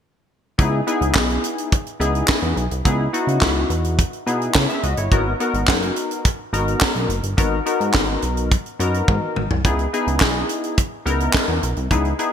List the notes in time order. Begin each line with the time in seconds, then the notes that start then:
0.58 C#2 B3 D#4 E4 G#4, kick, closed hi-hat
0.87 B3 D#4 E4 G#4, closed hi-hat
1.01 C#2, closed hi-hat
1.15 B1, kick, snare, clap
1.30 closed hi-hat
1.44 closed hi-hat
1.58 closed hi-hat
1.72 kick, closed hi-hat
1.86 closed hi-hat
2.00 C#2 B3 D#4 E4 G#4, closed hi-hat
2.15 closed hi-hat
2.28 kick, snare, clap
2.42 E2, closed hi-hat
2.57 B1, closed hi-hat
2.71 C2, closed hi-hat
2.85 C#2 B3 D#4 E4 G#4, kick, closed hi-hat
3.13 B3 D#4 E4 F#4, closed hi-hat
3.27 C#3, closed hi-hat
3.41 C#2, kick, snare, clap
3.70 E2, closed hi-hat
3.84 closed hi-hat
3.98 kick, closed hi-hat
4.13 closed hi-hat
4.26 B2 B3 D#4 E4 G#4, closed hi-hat
4.42 closed hi-hat
4.54 C#3 E4 C#5, kick, snare, clap
4.69 G#4 E5, closed hi-hat
4.83 C#2 F#4 D#5, closed hi-hat
4.97 G1 E4 C#5, closed hi-hat
5.11 G#1 B3 D#4 F#4 A#4, kick, closed hi-hat
5.40 B3 D#4 F#4 A#4, closed hi-hat
5.54 G#1, closed hi-hat
5.67 F#1, kick, snare, clap
5.82 closed hi-hat
5.96 closed hi-hat
6.11 closed hi-hat
6.25 kick, closed hi-hat
6.53 G#1 B3 D#4 F#4 A#4, closed hi-hat
6.68 closed hi-hat
6.81 kick, snare, clap
6.95 B1, closed hi-hat
7.09 F#1, closed hi-hat
7.23 G1, closed hi-hat
7.37 G#1 B3 D#4 F#4 A#4, kick, closed hi-hat
7.66 B3 D#4 F#4 A#4, closed hi-hat
7.80 G#2, closed hi-hat
7.93 G#1, kick, snare, clap
8.22 B1, closed hi-hat
8.37 closed hi-hat
8.51 kick, closed hi-hat
8.66 closed hi-hat
8.79 F#2 B3 D#4 F#4 A#4, closed hi-hat
8.94 closed hi-hat
9.08 G#2, kick, high tom
9.36 G#1, mid tom
9.51 C2, floor tom
9.65 C#2 B3 D#4 E4 G#4, kick, closed hi-hat
9.79 closed hi-hat
9.93 B3 D#4 E4 G#4, closed hi-hat
10.07 C#2, closed hi-hat
10.20 B1, kick, snare, clap
10.49 closed hi-hat
10.63 closed hi-hat
10.77 kick, closed hi-hat
11.05 C#2 B3 D#4 E4 A#4, closed hi-hat
11.20 closed hi-hat
11.33 kick, snare, clap
11.48 E2
11.63 B1, closed hi-hat
11.77 C2, closed hi-hat
11.91 C#2 B3 D#4 E4 G#4, kick, closed hi-hat
12.05 closed hi-hat
12.19 B3 D#4 E4 G#4, closed hi-hat